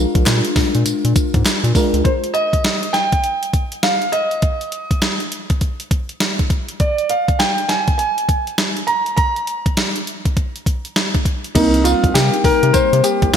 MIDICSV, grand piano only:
0, 0, Header, 1, 2, 480
1, 0, Start_track
1, 0, Key_signature, -3, "minor"
1, 0, Tempo, 594059
1, 1654, Time_signature, 4, 2, 24, 8
1, 10801, End_track
2, 0, Start_track
2, 0, Title_t, "Grand piano"
2, 0, Program_c, 0, 0
2, 0, Note_on_c, 0, 77, 92
2, 1141, Note_off_c, 0, 77, 0
2, 1650, Note_on_c, 0, 72, 74
2, 1704, Note_off_c, 0, 72, 0
2, 1888, Note_on_c, 0, 75, 106
2, 2368, Note_on_c, 0, 79, 102
2, 2385, Note_off_c, 0, 75, 0
2, 2819, Note_off_c, 0, 79, 0
2, 3094, Note_on_c, 0, 77, 96
2, 3331, Note_on_c, 0, 75, 98
2, 3341, Note_off_c, 0, 77, 0
2, 4020, Note_off_c, 0, 75, 0
2, 5495, Note_on_c, 0, 74, 81
2, 5736, Note_on_c, 0, 77, 83
2, 5742, Note_off_c, 0, 74, 0
2, 5958, Note_off_c, 0, 77, 0
2, 5971, Note_on_c, 0, 79, 99
2, 6196, Note_off_c, 0, 79, 0
2, 6210, Note_on_c, 0, 80, 98
2, 6434, Note_off_c, 0, 80, 0
2, 6447, Note_on_c, 0, 80, 91
2, 6898, Note_off_c, 0, 80, 0
2, 7166, Note_on_c, 0, 82, 97
2, 7393, Note_off_c, 0, 82, 0
2, 7405, Note_on_c, 0, 82, 105
2, 9057, Note_off_c, 0, 82, 0
2, 9330, Note_on_c, 0, 63, 89
2, 9569, Note_on_c, 0, 65, 93
2, 9579, Note_off_c, 0, 63, 0
2, 9811, Note_on_c, 0, 67, 102
2, 9819, Note_off_c, 0, 65, 0
2, 10056, Note_on_c, 0, 70, 113
2, 10060, Note_off_c, 0, 67, 0
2, 10289, Note_on_c, 0, 72, 105
2, 10302, Note_off_c, 0, 70, 0
2, 10514, Note_off_c, 0, 72, 0
2, 10533, Note_on_c, 0, 67, 98
2, 10774, Note_on_c, 0, 65, 100
2, 10781, Note_off_c, 0, 67, 0
2, 10801, Note_off_c, 0, 65, 0
2, 10801, End_track
0, 0, End_of_file